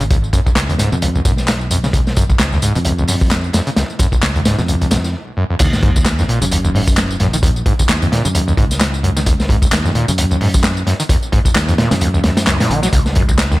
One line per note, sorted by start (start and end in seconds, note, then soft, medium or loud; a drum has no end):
0.00 0.28 G#1 medium
0.00 0.04 C#3 medium
0.00 closed hi-hat soft
0.00 tambourine soft
0.10 0.17 C#2 medium
0.10 kick loud
0.10 closed hi-hat medium
0.10 tambourine soft
0.24 tambourine soft
0.33 0.40 F#2 loud
0.33 kick medium
0.33 closed hi-hat medium
0.33 tambourine medium
0.46 0.50 B1 medium
0.46 muted fingered electric bass stroke soft
0.46 kick medium
0.46 tambourine soft
0.55 0.85 C#2 medium
0.55 snare loud
0.55 clap loud
0.55 closed hi-hat medium
0.55 tambourine soft
0.69 0.75 D#2 loud
0.69 closed hi-hat soft
0.69 tambourine soft
0.78 0.90 G#2 loud
0.78 snare medium
0.78 closed hi-hat medium
0.78 tambourine medium
0.92 1.20 F2 loud
0.92 0.95 B2 medium
0.92 tambourine soft
1.02 1.09 C#2 medium
1.02 closed hi-hat medium
1.02 tambourine soft
1.15 1.20 C#2 loud
1.15 tambourine soft
1.25 2.35 B1 medium
1.25 1.32 F#2 loud
1.25 kick loud
1.25 closed hi-hat medium
1.25 tambourine medium
1.37 snare soft
1.37 tambourine soft
1.48 snare loud
1.48 clap loud
1.48 closed hi-hat medium
1.48 tambourine soft
1.61 tambourine soft
1.71 1.78 F2 loud
1.71 closed hi-hat medium
1.71 tambourine medium
1.84 1.87 C#3 medium
1.84 snare soft
1.84 tambourine soft
1.93 2.01 C#2 medium
1.93 kick loud
1.93 closed hi-hat medium
1.93 tambourine soft
2.07 snare medium
2.07 tambourine soft
2.17 2.24 F#2 loud
2.17 kick loud
2.17 closed hi-hat medium
2.17 tambourine medium
2.30 2.33 B1 medium
2.30 kick medium
2.30 tambourine soft
2.39 2.69 C#2 medium
2.39 snare loud
2.39 clap loud
2.39 closed hi-hat medium
2.39 tambourine soft
2.52 2.58 D#2 loud
2.52 snare soft
2.52 tambourine soft
2.62 2.73 G#2 loud
2.62 closed hi-hat medium
2.62 tambourine medium
2.75 3.49 F2 loud
2.75 2.79 B2 medium
2.75 closed hi-hat soft
2.75 tambourine soft
2.85 2.92 C#2 medium
2.85 closed hi-hat medium
2.85 tambourine soft
2.98 3.04 C#2 loud
2.98 tambourine soft
3.08 3.15 F#2 loud
3.08 open hi-hat medium
3.08 tambourine medium
3.21 kick medium
3.21 tambourine soft
3.31 snare loud
3.31 clap loud
3.31 closed hi-hat medium
3.31 tambourine soft
3.44 tambourine soft
3.53 3.61 F2 loud
3.53 snare medium
3.53 closed hi-hat medium
3.53 tambourine medium
3.67 3.70 C#3 medium
3.67 closed hi-hat soft
3.67 tambourine soft
3.76 3.84 C#2 medium
3.76 snare loud
3.76 closed hi-hat medium
3.76 tambourine soft
3.90 tambourine soft
3.99 4.07 F#2 loud
3.99 kick medium
3.99 closed hi-hat medium
3.99 tambourine medium
4.12 4.16 B1 medium
4.12 muted fingered electric bass stroke soft
4.12 kick medium
4.12 tambourine soft
4.23 4.52 C#2 medium
4.23 snare loud
4.23 clap loud
4.23 closed hi-hat medium
4.23 tambourine soft
4.36 4.41 D#2 loud
4.36 closed hi-hat soft
4.36 tambourine soft
4.45 4.56 G#2 loud
4.45 snare loud
4.45 closed hi-hat medium
4.45 tambourine medium
4.58 5.14 F2 medium
4.58 4.62 B2 medium
4.58 snare soft
4.58 tambourine soft
4.68 4.76 C#2 medium
4.68 closed hi-hat medium
4.68 tambourine soft
4.81 4.87 C#2 loud
4.81 closed hi-hat soft
4.81 tambourine soft
4.91 4.98 B1 medium
4.91 snare loud
4.91 closed hi-hat medium
4.91 tambourine medium
5.04 snare soft
5.04 tambourine soft
5.37 5.44 F#2 loud
5.50 5.55 F2 medium
5.59 5.67 D#2 medium
5.59 6.24 D#2 loud
5.59 kick loud
5.59 closed hi-hat medium
5.59 crash medium
5.59 tambourine medium
5.59 sub drop medium
5.73 snare medium
5.73 tambourine soft
5.83 5.90 G#2 loud
5.83 kick loud
5.83 closed hi-hat medium
5.96 5.99 C#2 medium
5.96 kick medium
5.96 tambourine medium
6.06 snare loud
6.06 clap loud
6.06 closed hi-hat medium
6.06 tambourine medium
6.19 6.24 F2 loud
6.19 snare soft
6.19 tambourine soft
6.29 6.39 A#2 loud
6.29 closed hi-hat medium
6.42 7.15 F#2 loud
6.42 6.45 C#3 medium
6.42 closed hi-hat soft
6.42 tambourine medium
6.51 6.59 D#2 medium
6.51 closed hi-hat medium
6.51 tambourine medium
6.65 6.70 D#2 loud
6.65 tambourine soft
6.74 6.82 G#2 loud
6.74 open hi-hat medium
6.88 kick medium
6.88 tambourine medium
6.97 snare loud
6.97 clap loud
6.97 closed hi-hat medium
6.97 tambourine medium
7.11 tambourine soft
7.20 7.61 A#1 loud
7.20 7.27 F#2 loud
7.20 snare soft
7.20 closed hi-hat medium
7.33 7.37 D#3 medium
7.33 closed hi-hat soft
7.33 tambourine medium
7.43 7.50 D#2 medium
7.43 kick loud
7.43 closed hi-hat medium
7.43 tambourine medium
7.56 tambourine soft
7.66 7.73 G#2 loud
7.66 kick loud
7.66 closed hi-hat medium
7.79 7.82 C#2 medium
7.79 muted fingered electric bass stroke soft
7.79 kick medium
7.79 tambourine medium
7.89 8.18 D#2 medium
7.89 snare loud
7.89 clap loud
7.89 closed hi-hat medium
7.89 tambourine medium
8.02 8.07 F2 loud
8.02 closed hi-hat soft
8.02 tambourine soft
8.12 8.23 A#2 loud
8.12 snare medium
8.12 closed hi-hat medium
8.25 8.53 F#2 medium
8.25 8.28 C#3 medium
8.25 tambourine medium
8.35 8.42 D#2 medium
8.35 closed hi-hat medium
8.35 tambourine medium
8.48 8.53 D#2 loud
8.48 tambourine soft
8.57 9.67 C#2 medium
8.57 8.65 G#2 loud
8.57 kick medium
8.57 closed hi-hat medium
8.71 snare soft
8.71 tambourine medium
8.81 snare loud
8.81 clap loud
8.81 closed hi-hat medium
8.81 tambourine medium
8.94 tambourine soft
9.03 9.11 F#2 loud
9.03 closed hi-hat medium
9.17 9.20 D#3 medium
9.17 snare soft
9.17 tambourine medium
9.26 9.34 D#2 medium
9.26 kick loud
9.26 closed hi-hat medium
9.26 tambourine medium
9.40 snare medium
9.40 tambourine soft
9.49 9.56 G#2 loud
9.49 kick medium
9.49 closed hi-hat medium
9.62 9.66 C#2 medium
9.62 kick medium
9.62 tambourine medium
9.72 10.02 D#2 medium
9.72 snare loud
9.72 clap loud
9.72 closed hi-hat medium
9.72 tambourine medium
9.85 9.91 F2 loud
9.85 snare soft
9.85 tambourine soft
9.95 10.06 A#2 loud
9.95 closed hi-hat medium
10.08 10.82 F#2 loud
10.08 10.12 C#3 medium
10.08 closed hi-hat soft
10.08 tambourine medium
10.18 10.25 D#2 medium
10.18 closed hi-hat medium
10.18 tambourine medium
10.31 10.36 D#2 loud
10.31 tambourine soft
10.41 10.48 G#2 loud
10.41 open hi-hat medium
10.54 kick loud
10.54 tambourine medium
10.64 snare loud
10.64 clap loud
10.64 closed hi-hat medium
10.64 tambourine medium
10.77 tambourine soft
10.87 10.94 F#2 loud
10.87 snare soft
10.87 closed hi-hat medium
11.00 11.03 D#3 medium
11.00 closed hi-hat soft
11.00 tambourine medium
11.09 11.17 D#2 medium
11.09 kick loud
11.09 closed hi-hat medium
11.09 tambourine medium
11.23 tambourine soft
11.32 11.40 G#2 loud
11.32 kick medium
11.32 closed hi-hat medium
11.45 11.49 C#2 medium
11.45 muted fingered electric bass stroke soft
11.45 kick medium
11.45 tambourine medium
11.55 11.85 D#2 medium
11.55 snare loud
11.55 clap loud
11.55 closed hi-hat medium
11.55 tambourine medium
11.68 11.74 F2 loud
11.68 closed hi-hat soft
11.68 tambourine soft
11.78 11.89 A#2 loud
11.78 snare loud
11.78 closed hi-hat medium
11.91 12.65 F#2 loud
11.91 11.95 C#3 medium
11.91 snare loud
11.91 closed hi-hat medium
11.91 tambourine medium
12.01 12.08 D#2 medium
12.01 closed hi-hat medium
12.01 tambourine medium
12.14 12.20 D#2 loud
12.14 tambourine soft
12.24 12.31 D#2 loud
12.24 snare loud
12.24 closed hi-hat medium
12.37 snare loud
12.37 closed hi-hat medium
12.37 tambourine medium
12.46 12.58 C#2 medium
12.46 snare loud
12.46 clap loud
12.46 closed hi-hat medium
12.46 tambourine medium
12.60 12.71 A#2 medium
12.60 snare loud
12.60 closed hi-hat medium
12.60 tambourine soft
12.70 12.87 A#1 medium
12.70 12.81 D#3 loud
12.70 closed hi-hat medium
12.83 12.88 F#3 loud
12.83 snare soft
12.83 tambourine medium
12.93 13.00 C#2 medium
12.93 13.56 C#2 loud
12.93 kick loud
12.93 closed hi-hat medium
12.93 tambourine medium
13.06 snare medium
13.06 tambourine soft
13.15 13.23 F#2 loud
13.15 kick medium
13.15 closed hi-hat medium
13.28 13.32 B1 medium
13.28 kick loud
13.28 tambourine medium
13.38 snare loud
13.38 clap loud
13.38 closed hi-hat medium
13.38 tambourine medium
13.51 13.57 D#2 loud
13.51 snare soft
13.51 tambourine soft